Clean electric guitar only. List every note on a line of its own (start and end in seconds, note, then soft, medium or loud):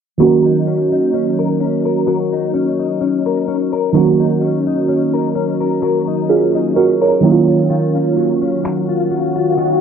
0.20 2.07 F#3 medium
0.20 1.38 A#4 medium
0.45 0.92 D#4 medium
0.67 1.13 C#4 medium
0.92 2.32 D#4 medium
1.13 1.60 C#4 medium
1.39 1.85 A#4 medium
1.60 2.54 C#4 medium
1.85 2.07 A#4 medium
2.07 3.94 F#3 medium
2.07 3.26 A#4 medium
2.33 2.79 D#4 medium
2.54 3.00 C#4 medium
2.79 4.19 D#4 medium
3.01 3.47 C#4 medium
3.26 3.72 A#4 medium
3.48 4.41 C#4 medium
3.73 3.95 A#4 medium
3.94 5.82 F#3 medium
3.94 5.13 A#4 medium
4.20 4.66 D#4 medium
4.41 4.88 C#4 medium
4.67 6.07 D#4 medium
4.88 5.35 C#4 medium
5.14 5.60 A#4 medium
5.35 6.29 C#4 medium
5.60 5.82 A#4 medium
5.82 7.51 F#3 medium
5.82 7.01 A#4 medium
6.07 6.54 D#4 medium
6.29 6.76 C#4 medium
6.54 7.48 D#4 medium
6.76 7.73 C#4 medium
7.01 9.81 A#4 medium
7.23 7.68 D#3 medium
7.48 7.70 F4 medium
7.70 9.56 D#3 medium
7.70 8.89 F4 medium
7.95 8.41 C#4 medium
8.17 8.62 F#3 medium
8.42 9.81 C#4 medium
8.64 9.09 F#3 medium
8.89 9.35 F4 medium
9.11 9.81 F#3 medium
9.36 9.57 F4 medium
9.57 9.81 D#3 medium
9.57 9.81 F4 medium